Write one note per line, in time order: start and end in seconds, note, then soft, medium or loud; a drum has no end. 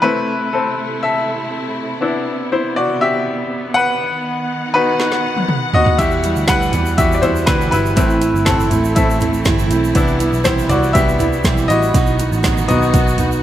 0.02 3.97 C3 medium
0.02 0.74 A3 medium
0.02 2.00 A3 medium
0.02 0.53 C4 medium
0.02 0.50 E4 medium
0.02 3.97 E4 medium
0.02 0.54 B4 loud
0.53 1.00 C4 medium
0.53 1.02 A4 medium
1.03 1.74 A4 medium
1.03 1.73 E5 medium
2.01 3.96 B3 medium
2.01 5.95 B3 medium
2.01 3.96 D4 medium
2.01 2.51 E4 medium
2.52 2.75 E4 medium
2.52 2.75 C5 medium
2.76 3.00 F#4 medium
2.76 3.02 D5 medium
3.01 3.72 G4 medium
3.01 3.72 E5 loud
3.74 4.71 B4 medium
3.74 4.77 F#5 loud
4.00 5.97 D#3 medium
4.00 7.93 F#5 medium
4.74 5.08 B3 medium
4.74 5.22 D#4 medium
4.74 5.08 F#4 medium
4.74 5.21 B4 loud
5.00 snare medium
5.12 snare medium
5.37 high tom medium
5.49 mid tom medium
5.74 5.98 F#4 medium
5.74 6.00 D#5 loud
5.74 floor tom loud
5.86 floor tom medium
5.98 6.24 E2 medium
5.98 6.34 E2 loud
5.98 6.24 B2 medium
5.98 7.95 E3 medium
5.98 6.24 E3 medium
5.98 6.97 G3 medium
5.98 7.95 G3 medium
5.98 6.24 G3 medium
5.98 6.22 B3 medium
5.98 6.97 E4 medium
5.98 6.97 F#4 medium
5.98 6.21 F#4 medium
5.98 6.46 G4 medium
5.98 6.45 E5 loud
5.98 kick loud
5.98 closed hi-hat loud
5.98 shaker medium
6.11 shaker soft
6.23 6.47 E3 soft
6.23 6.48 G3 medium
6.23 6.48 B3 medium
6.23 6.48 F#4 medium
6.23 closed hi-hat medium
6.23 shaker medium
6.36 6.71 D2 medium
6.36 shaker medium
6.48 6.73 E2 medium
6.48 6.74 B2 medium
6.48 6.74 E3 loud
6.48 6.73 G3 loud
6.48 6.72 B3 medium
6.48 6.71 F#4 medium
6.48 6.95 B4 medium
6.48 6.95 F#5 loud
6.48 kick loud
6.48 snare loud
6.48 closed hi-hat loud
6.48 shaker medium
6.62 shaker medium
6.72 6.97 E2 medium
6.72 6.96 E3 medium
6.72 6.97 G3 medium
6.72 6.98 B3 medium
6.72 6.98 F#4 medium
6.72 closed hi-hat medium
6.72 floor tom medium
6.72 shaker medium
6.86 shaker medium
6.98 7.44 E2 medium
6.98 7.23 E3 medium
6.98 7.21 G3 soft
6.98 7.23 G3 medium
6.98 7.22 B3 medium
6.98 7.21 E4 soft
6.98 7.21 F#4 medium
6.98 7.16 G4 medium
6.98 7.17 E5 loud
6.98 kick loud
6.98 closed hi-hat loud
6.98 shaker medium
7.12 7.22 D5 medium
7.12 shaker medium
7.22 7.47 E3 soft
7.22 7.47 G3 soft
7.22 7.47 B3 medium
7.22 7.46 E4 medium
7.22 7.48 F#4 medium
7.22 7.48 C5 medium
7.22 closed hi-hat medium
7.22 floor tom medium
7.22 shaker medium
7.36 shaker medium
7.46 7.71 D2 loud
7.46 7.72 E2 loud
7.46 7.73 B2 medium
7.46 7.73 E3 loud
7.46 7.72 G3 loud
7.46 7.71 B3 loud
7.46 7.71 E4 medium
7.46 7.70 F#4 medium
7.46 7.70 B4 loud
7.46 kick loud
7.46 snare loud
7.46 closed hi-hat medium
7.46 shaker medium
7.61 shaker medium
7.71 7.96 G1 medium
7.71 7.95 E3 medium
7.71 7.97 G3 medium
7.71 7.97 B3 medium
7.71 7.96 E4 medium
7.71 7.97 F#4 medium
7.71 8.49 B4 loud
7.71 closed hi-hat medium
7.71 shaker medium
7.86 shaker medium
7.96 8.32 A1 loud
7.96 8.22 A2 medium
7.96 11.90 E3 medium
7.96 8.22 E3 medium
7.96 8.67 A3 medium
7.96 9.93 A3 medium
7.96 8.22 A3 loud
7.96 8.46 C4 medium
7.96 8.22 C4 loud
7.96 8.68 E4 medium
7.96 11.90 E4 medium
7.96 8.20 E4 medium
7.96 kick loud
7.96 closed hi-hat loud
7.96 shaker medium
8.10 shaker soft
8.21 8.46 A3 soft
8.21 8.46 C4 medium
8.21 8.47 E4 medium
8.21 closed hi-hat medium
8.21 shaker medium
8.34 8.69 G1 medium
8.34 shaker medium
8.45 8.71 A2 loud
8.45 8.72 E3 loud
8.45 8.72 A3 loud
8.45 8.93 C4 medium
8.45 8.71 C4 loud
8.45 8.69 E4 loud
8.45 8.92 A4 medium
8.45 kick loud
8.45 snare loud
8.45 closed hi-hat loud
8.45 shaker medium
8.60 shaker medium
8.70 8.95 A1 loud
8.70 8.95 A3 medium
8.70 8.96 C4 medium
8.70 8.96 E4 medium
8.70 closed hi-hat medium
8.70 floor tom medium
8.70 shaker medium
8.84 shaker medium
8.95 9.43 A1 loud
8.95 9.21 E3 medium
8.95 9.19 A3 medium
8.95 9.21 A3 medium
8.95 9.19 C4 soft
8.95 9.20 C4 medium
8.95 9.19 E4 medium
8.95 9.18 E4 medium
8.95 9.68 A4 medium
8.95 9.67 E5 medium
8.95 kick loud
8.95 closed hi-hat medium
8.95 shaker medium
9.10 shaker medium
9.20 9.45 A3 soft
9.20 9.45 C4 medium
9.20 9.45 E4 medium
9.20 closed hi-hat medium
9.20 floor tom medium
9.20 shaker medium
9.34 shaker medium
9.45 9.69 G1 medium
9.45 9.70 A2 medium
9.45 9.71 E3 medium
9.45 9.71 A3 loud
9.45 9.70 C4 loud
9.45 9.69 E4 loud
9.45 kick loud
9.45 snare loud
9.45 closed hi-hat medium
9.45 shaker medium
9.59 shaker medium
9.70 9.94 B1 medium
9.70 9.96 A3 medium
9.70 9.96 C4 medium
9.70 9.95 E4 medium
9.70 closed hi-hat medium
9.70 shaker medium
9.84 shaker medium
9.94 10.30 C2 loud
9.94 10.20 C3 medium
9.94 10.21 E3 loud
9.94 10.20 G3 medium
9.94 11.91 B3 medium
9.94 10.29 B3 medium
9.94 10.19 B3 loud
9.94 10.29 D4 medium
9.94 10.29 E4 medium
9.94 10.18 E4 medium
9.94 kick loud
9.94 closed hi-hat loud
9.94 shaker medium
10.08 shaker soft
10.19 10.44 G3 soft
10.19 10.45 B3 medium
10.19 10.45 E4 medium
10.19 closed hi-hat medium
10.19 shaker medium
10.32 10.67 B1 medium
10.32 shaker medium
10.44 10.70 C3 medium
10.44 10.70 E3 loud
10.44 10.70 G3 loud
10.44 10.69 B3 loud
10.44 10.68 E4 loud
10.44 10.69 E4 medium
10.44 10.70 C5 medium
10.44 kick medium
10.44 snare loud
10.44 closed hi-hat loud
10.44 shaker medium
10.59 shaker medium
10.69 10.93 C2 loud
10.69 10.94 G3 medium
10.69 10.95 B3 medium
10.69 10.95 E4 medium
10.69 10.94 F#4 medium
10.69 10.93 D5 loud
10.69 closed hi-hat medium
10.69 floor tom medium
10.69 shaker medium
10.83 shaker medium
10.93 11.41 C2 medium
10.93 11.19 E3 medium
10.93 11.20 G3 medium
10.93 11.17 B3 soft
10.93 11.19 B3 medium
10.93 11.17 D4 soft
10.93 11.18 E4 medium
10.93 11.66 G4 medium
10.93 11.71 E5 loud
10.93 kick loud
10.93 closed hi-hat loud
10.93 shaker medium
11.09 shaker medium
11.19 11.45 G3 medium
11.19 11.45 B3 medium
11.19 11.44 E4 medium
11.19 closed hi-hat medium
11.19 floor tom medium
11.19 shaker medium
11.33 shaker soft
11.44 11.68 B1 medium
11.44 11.70 C3 medium
11.44 11.70 E3 loud
11.44 11.70 G3 medium
11.44 11.70 B3 medium
11.44 11.69 E4 loud
11.44 kick loud
11.44 snare loud
11.44 closed hi-hat loud
11.44 shaker medium
11.58 shaker medium
11.68 11.93 A1 medium
11.68 11.94 B3 medium
11.68 11.95 E4 medium
11.68 12.65 F#4 medium
11.68 12.67 D#5 loud
11.68 closed hi-hat medium
11.68 shaker medium
11.72 11.95 G3 soft
11.82 shaker medium
11.92 12.29 B1 loud
11.92 12.19 B2 medium
11.92 13.43 D#3 medium
11.92 12.19 F#3 medium
11.92 13.43 B3 medium
11.92 12.20 B3 medium
11.92 12.19 D#4 medium
11.92 13.43 F#4 loud
11.92 kick loud
11.92 closed hi-hat loud
11.92 shaker medium
11.96 12.17 F#4 medium
12.06 shaker soft
12.19 12.43 B3 soft
12.19 12.44 D#4 medium
12.19 12.44 F#4 medium
12.19 closed hi-hat medium
12.19 shaker medium
12.32 12.66 A1 medium
12.32 shaker medium
12.43 12.68 B2 loud
12.43 12.69 F#3 medium
12.43 12.69 B3 medium
12.43 12.68 D#4 loud
12.43 12.67 F#4 loud
12.43 kick loud
12.43 snare loud
12.43 closed hi-hat medium
12.43 shaker medium
12.57 shaker medium
12.68 12.92 B1 medium
12.68 13.39 B3 medium
12.68 12.93 B3 medium
12.68 13.39 D#4 medium
12.68 12.94 D#4 medium
12.68 12.93 F#4 medium
12.68 13.15 F#4 medium
12.68 13.15 D#5 medium
12.68 closed hi-hat medium
12.68 floor tom medium
12.68 shaker medium
12.82 shaker medium
12.93 13.40 B1 loud
12.93 13.18 F#3 medium
12.93 13.19 B3 medium
12.93 13.18 D#4 medium
12.93 13.17 F#4 medium
12.93 kick loud
12.93 closed hi-hat medium
12.93 shaker medium
13.08 shaker medium
13.18 13.42 B3 soft
13.18 13.43 D#4 medium
13.18 13.43 F#4 medium
13.18 closed hi-hat medium
13.18 floor tom medium
13.18 shaker medium
13.32 shaker medium